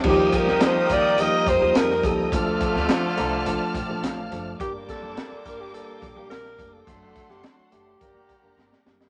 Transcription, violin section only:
\new Staff \with { instrumentName = "Violin section" } { \time 4/4 \key g \minor \tempo 4 = 106 <bes' g'' ees'''>1 | <d'' a'' f'''>1 | <bes g'' d'''>1 | <a' fis'' c'''>2 <g' d'' bes''>2 | }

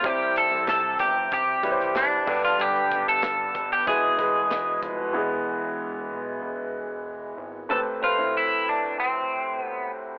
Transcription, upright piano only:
<<
  \new Staff \with { instrumentName = "Upright piano" } { \time 4/4 \key a \minor \tempo 4 = 94 <g e' c''>4. r4 <g e' b' c''>4 <g d' b'>8~ | <g d' b'>4 r4 <gis e' b'>8 <gis e' b'>4 r8 | r1 | <a c' b'>16 r16 <a c' b'>16 <a c' e'>4. r4. r16 | }
  \new Staff \with { instrumentName = "Upright piano" } { \clef bass \time 4/4 \key a \minor c4. r2 <g, d>8~ | <g, d>4 r4 b,4. r8 | <e gis b>1 | <a, c>4. r2 r8 | }
>>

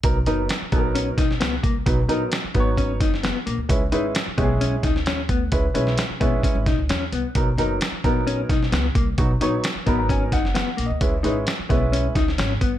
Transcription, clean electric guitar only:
\new Staff \with { instrumentName = "Clean electric guitar" } { \time 4/4 \key b \major \tempo 4 = 131 r8 dis'8 r8 b8 cis'8 dis'8 b8 ais8 | r8 dis'8 r8 b8 cis'8 dis'8 b8 ais8 | r8 dis'8 r8 b8 cis'8 dis'8 cis'8 b8 | r8 cis'8 r8 b8 cis'8 dis'8 cis'8 b8 |
r8 dis'8 r8 b8 cis'8 dis'8 b8 ais8 | r8 dis'8 r8 b8 cis'8 dis'8 b8 ais8 | r8 dis'8 r8 b8 cis'8 dis'8 cis'8 b8 | }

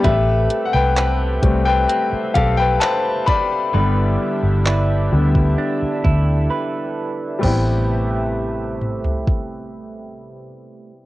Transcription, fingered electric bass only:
\new Staff \with { instrumentName = "Fingered electric bass" } { \clef bass \time 4/4 \key a \minor \tempo 4 = 65 a,,8 r16 c,8. c,8 r8 b,,8 r4 | g,,8 r16 g,,8. d,8 r8 d,8 r4 | a,,1 | }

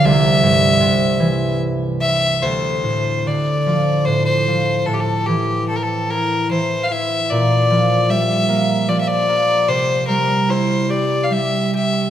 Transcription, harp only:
\new Staff \with { instrumentName = "Harp" } { \clef bass \time 3/4 \key d \minor \tempo 4 = 74 c,8 g,8 c8 e4. | d,8 a,8 d8 f8 a,8 f8 | a,8 e8 c'8 e'8 e8 e'8 | bes,8 f8 g8 bes8 f8 bes8 |
c8 g8 e'8 g'8 g8 g'8 | }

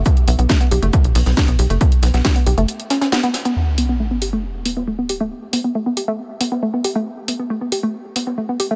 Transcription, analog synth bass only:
\new Staff \with { instrumentName = "Analog synth bass" } { \clef bass \time 4/4 \key a \mixolydian \tempo 4 = 137 r8 b,,16 b,,16 r8 b,,16 fis,,16 r16 b,,16 b,,16 b,,16 r16 b,,16 b,,16 fis,,16 | r8 b,,16 b,,16 r8 b,,16 fis,,16 r2 | r1 | r1 |
r1 | }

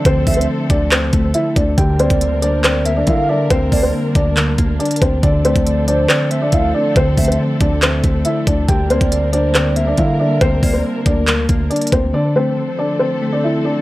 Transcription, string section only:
\new Staff \with { instrumentName = "String section" } { \time 4/4 \key d \minor \tempo 4 = 139 << { <f c' a'>1 | <g bes bes'>1~ | <g bes bes'>1 | <f c' a'>1~ |
<f c' a'>1 | <g bes bes'>1~ | <g bes bes'>1 | <f c' a'>1 | } \\ { d'1 | d'1~ | d'1~ | d'1~ |
d'1~ | d'1~ | d'1 | d'1 | } >> }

